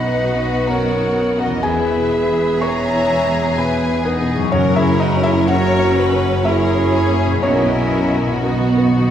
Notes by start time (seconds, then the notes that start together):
Already playing: B1 F#2 B2 B3 D#4 F#4 B4 D#5 F#5 B5
0.03 D#4
0.35 B3
0.67 F#2 A#4 C#5 F#5 A#5
1.01 B3
1.31 F#2
1.38 F#4 A#4 D#5 F#5
1.46 E2
1.50 B3
1.55 E3
1.59 G#4 B4 G#5
1.64 E1 E2 E3 E4 B4 E5
1.97 B2
2.12 G#4
2.29 E4
2.61 B4 C#5 E5 A#5 C#6
2.93 E4
3.26 B3
3.57 B2 B4 E5 G#5 B5
3.90 B3
4.04 B3 D#4 G#4 B4
4.21 B2
4.36 F#2
4.40 F#3
4.45 C#4
4.49 F#1 F#2 F#3 C#4 F#4 C#5
4.53 F#2 A#4
4.76 E4 G#4 C#5 E5
4.84 C#3
4.99 D#4 F#4 B4 D#5
5.17 C#4
5.23 E4 G#4 C#5 E5
5.47 F#4 A#4 C#5 F#5
5.80 C#5
5.98 B4
6.12 C#4
6.43 A#3 E4 G#4 A#4 C#5 E5
6.77 C#3
6.95 G#4
7.10 A#3
7.26 B2
7.30 B3
7.35 D#5
7.40 B1 B2 C#4 F#4 C#5
7.44 B1 B2 F#3 E4 F#4 A#4 D#5
7.52 B2
7.60 B2
7.68 B2
7.75 F#2 B2
7.83 B2
7.90 B2
7.98 B2
8.06 B2
8.10 B2 D#5
8.22 B2
8.29 B2
8.37 B2
8.43 B2 B3 D#4 F#4 B4
8.53 B2
8.60 B2
8.69 B2
8.76 B2 B4
8.85 B2
8.92 B2 B3
9.00 B2
9.07 B2